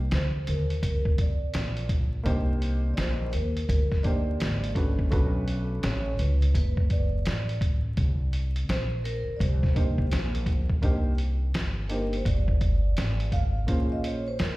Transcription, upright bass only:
0.12 0.46 D2 loud
0.48 0.83 D#2 medium
0.83 1.51 C2 medium
1.55 2.22 A#1 medium
2.26 2.94 C2 loud
2.98 3.32 A#1 medium
3.34 3.67 D#2 medium
3.69 4.37 D2 medium
4.41 5.08 G#1 medium
5.12 5.80 B1 loud
5.84 6.17 A1 loud
6.19 6.53 C#2 loud
6.55 7.22 F#1 medium
7.26 7.94 A1 medium
7.97 8.65 C2 medium
8.69 9.25 A#1 medium
9.27 muted upright bass stroke soft
9.40 10.08 C2 loud
10.12 10.79 A#1 medium
10.83 11.51 C2 medium
11.54 12.22 G1 medium
12.26 12.94 G1 medium
12.98 13.65 G#1 medium
13.69 14.36 A#1 medium
14.40 14.57 F2 medium

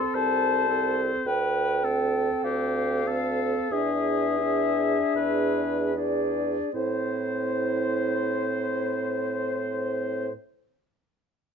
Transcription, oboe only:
0.00 0.16 A4 soft
0.15 1.28 C5 soft
1.27 1.86 B4 medium
1.85 2.43 A4 soft
2.44 3.09 G4 soft
3.07 3.73 A4 soft
3.72 5.15 G#4 soft
5.16 5.94 B4 soft
6.74 10.31 C5 soft

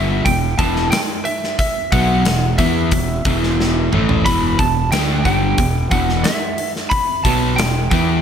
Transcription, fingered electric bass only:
0.00 0.24 G1 medium
0.26 0.57 E1 medium
0.59 0.90 E1 loud
1.93 2.24 B1 medium
2.27 2.57 E1 medium
2.59 2.90 E2 medium
2.92 3.23 E1 medium
3.26 3.88 E1 medium
3.93 4.24 A1 medium
4.26 4.57 E1 medium
4.59 4.90 E1 medium
4.92 5.23 D2 medium
5.25 5.56 G1 medium
5.58 5.90 E1 medium
5.92 6.23 E1 loud
7.25 7.56 B1 medium
7.59 7.90 E1 medium
7.92 8.22 E2 medium

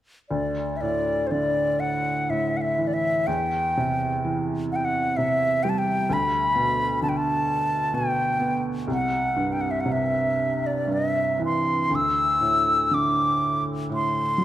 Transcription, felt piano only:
0.31 3.24 D2 soft
0.82 2.28 A2 soft
1.31 3.24 D3 soft
2.29 3.25 A2 soft
2.78 3.26 E3 soft
3.28 6.05 E2 soft
3.77 5.17 C3 soft
4.25 6.05 E3 soft
5.18 6.07 C3 soft
5.65 6.09 G3 soft
6.09 8.84 D2 soft
6.56 7.92 B2 soft
7.02 8.85 D3 soft
7.94 8.86 B2 soft
8.40 8.87 B3 soft
8.87 11.85 C2 soft
9.36 10.86 G2 soft
9.86 11.85 C3 soft
10.87 11.87 G2 soft
11.39 11.88 E3 soft
11.90 14.45 D2 soft
12.41 13.88 A2 soft
12.91 14.45 D3 soft
13.89 14.45 A2 soft
14.38 14.45 F#3 soft

